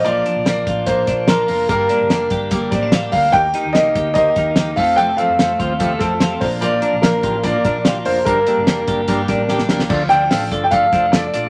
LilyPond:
<<
  \new Staff \with { instrumentName = "Upright piano" } { \time 4/4 \key g \minor \tempo 4 = 146 d''4 d''4 c''4 bes'4 | bes'2 r8 d''4 f''8 | g''4 ees''4 ees''4. f''8 | g''8 f''2 a'4 c''8 |
d''4 bes'4 d''4 r8 c''8 | bes'2.~ bes'8 r8 | r8 g''8~ \tuplet 3/2 { g''8. r8 g''16 } f''4 d''4 | }
  \new Staff \with { instrumentName = "Transistor combo organ" } { \time 4/4 \key g \minor r1 | r1 | <ees' g' bes'>8 <ees' g' bes'>8 <ees' g' bes'>8 <ees' g' bes'>8 <ees' g' c''>8 <ees' g' bes'>8 <ees' g' bes'>8 <c' f' a'>8~ | <c' f' a'>8 <c' f' a'>8 <c' f' c''>8 <c' f' c''>8 <c' f' a'>8 <c' f' a'>8 <c' f' g'>8 <d' f' bes'>8~ |
<d' f' bes'>8 <d' f' bes'>8 <d' f' bes'>8 <d' f' g'>8 <d' f' bes'>8 <d' f' bes'>8 <d' f' g'>8 <d' f' bes'>8 | <d' g' bes'>8 <d' g' a'>8 <d' g' bes'>8 <d' g' bes'>8 <d' g' bes'>8 <d' g' bes'>8 <d' g' bes'>8 <d' g' bes'>8 | <d' f' a' d''>8 <d' f' a' d''>8 <d' f' a' f''>8 <d' f' a' d''>8 <d' f' a' d''>8 <d' f' a' c''>8 <d' f' a' d''>8 <d' f' a' d''>8 | }
  \new Staff \with { instrumentName = "Clean electric guitar" } { \time 4/4 \key g \minor f8 d'8 bes8 f'8 bes8 d'8 f'8 bes8 | bes8 d'8 bes8 g'8 bes8 c'16 d'16 f'16 g'16 bes8 | r8 ees'8 bes8 g'8 bes8 ees'8 g'8 a8 | a8 c'8 a8 f'8 a8 c'8 f'8 f8 |
f8 d'8 bes8 f'8 bes8 d'8 f'8 bes8 | bes8 d'8 bes8 g'8 bes8 d'8 g'8 bes8 | f8 d'8 a8 a'8 a8 d'8 a8 d'8 | }
  \new Staff \with { instrumentName = "Steel-string acoustic guitar" } { \time 4/4 \key g \minor <bes, f bes d' f'>8 <bes d' f'>8 <f bes d' f'>8 <bes d' f'>8 <bes, f bes d' f'>8 <bes d' f'>8 <f bes d' f'>8 <bes d' f'>8 | <g, d g bes d' g'>8 <g bes d' g'>8 <g bes d' g'>8 <g bes d' g'>8 <g, d g bes d' g'>8 <g bes d' g'>8 <g bes d' g'>8 <g bes d' g'>8 | <ees bes ees' g'>8 <bes ees' g'>8 <ees bes ees' g'>8 <bes ees' g'>8 <ees bes ees' g'>8 <bes ees' g'>8 <ees bes ees' g'>8 <f a c' a'>8 | <f, c f a c' a'>8 <f a c' a'>8 <f a c' a'>8 <f a c' a'>8 <f, c f a c' a'>8 <f a c' a'>8 <f a c' a'>8 <bes d' bes'>8 |
<bes, f bes d' bes'>8 <bes d' bes'>8 <f bes d' bes'>8 <bes d' bes'>8 <bes, f bes d' bes'>8 <bes d' bes'>8 <f bes d' bes'>8 <bes d' bes'>8 | <g, d g bes d' g'>8 <g bes d' g'>8 <g bes d' g'>8 <g bes d' g'>8 <g, d g bes d' g'>8 <g bes d' g'>8 <g bes d' g'>8 <g bes d' g'>8 | r1 | }
  \new Staff \with { instrumentName = "Fingered electric bass" } { \clef bass \time 4/4 \key g \minor bes,,8 r16 bes,,16 bes,,8 a,,4 bes,,4 f,,8 | g,,8 r16 g,,16 f,,8 g,,4 a,,4 d,8 | ees,8 r16 ees,16 c,8 d,4 ees,4 f,8~ | f,8 r16 f,16 f,8 ees,4 f,4 bes,,8~ |
bes,,8 r16 bes,,16 bes,,8 a,,4 bes,,4 f,,8 | g,,8 r16 g,,16 f,,8 g,,4 a,,4 c,8 | d,8 d,8 a,,8 g,,4 f,,4 bes,,8 | }
  \new DrumStaff \with { instrumentName = "Drums" } \drummode { \time 4/4 hh8 hh8 <hh sn>8 <hh bd>8 <hh bd>8 <hh bd sn>8 <hh sn>8 hho8 | <hh bd>8 hh8 <hh sn>8 <hh bd>8 <hh bd>8 <hh bd sn>8 <hh sn>8 <hho bd>8 | <hh bd>8 hh8 <hh sn>8 <hh bd>8 <hh bd>8 <hh bd sn>8 <hh sn>8 <hho bd>8 | hh8 hh8 <hh sn>8 <hh bd>8 <hh bd>8 <hh bd sn>8 <hh sn>8 <hho bd>8 |
hh8 hh8 <hh sn>8 <hh bd>8 <hh bd>8 <hh bd>8 <hh sn>8 hho8 | <hh bd>8 hh8 <hh sn>8 <hh bd>8 <hh bd>8 <hh bd sn>8 sn16 sn16 sn16 sn16 | <cymc bd>8 <hho hhp>8 <hho hhp sn>8 <hho hhp bd>8 <hho hhp bd>8 <hho hhp bd sn>8 <hho hhp sn>8 <hho hhp>8 | }
>>